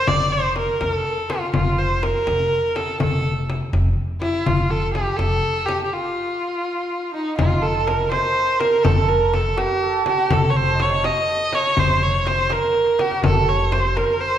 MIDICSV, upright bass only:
0, 0, Header, 1, 2, 480
1, 0, Start_track
1, 0, Tempo, 487527
1, 74, Time_signature, 6, 3, 24, 8
1, 14161, End_track
2, 0, Start_track
2, 0, Title_t, "Upright bass"
2, 0, Program_c, 0, 32
2, 77, Note_on_c, 0, 29, 74
2, 643, Note_off_c, 0, 29, 0
2, 804, Note_on_c, 0, 29, 85
2, 989, Note_off_c, 0, 29, 0
2, 1518, Note_on_c, 0, 29, 70
2, 2084, Note_off_c, 0, 29, 0
2, 2237, Note_on_c, 0, 29, 89
2, 2425, Note_off_c, 0, 29, 0
2, 2956, Note_on_c, 0, 29, 81
2, 3522, Note_off_c, 0, 29, 0
2, 3672, Note_on_c, 0, 29, 94
2, 3861, Note_off_c, 0, 29, 0
2, 4395, Note_on_c, 0, 29, 82
2, 4961, Note_off_c, 0, 29, 0
2, 5108, Note_on_c, 0, 29, 95
2, 5299, Note_off_c, 0, 29, 0
2, 7273, Note_on_c, 0, 29, 88
2, 8029, Note_off_c, 0, 29, 0
2, 8713, Note_on_c, 0, 29, 76
2, 9469, Note_off_c, 0, 29, 0
2, 10147, Note_on_c, 0, 29, 90
2, 10905, Note_off_c, 0, 29, 0
2, 11591, Note_on_c, 0, 29, 87
2, 12347, Note_off_c, 0, 29, 0
2, 13035, Note_on_c, 0, 29, 80
2, 13790, Note_off_c, 0, 29, 0
2, 14161, End_track
0, 0, End_of_file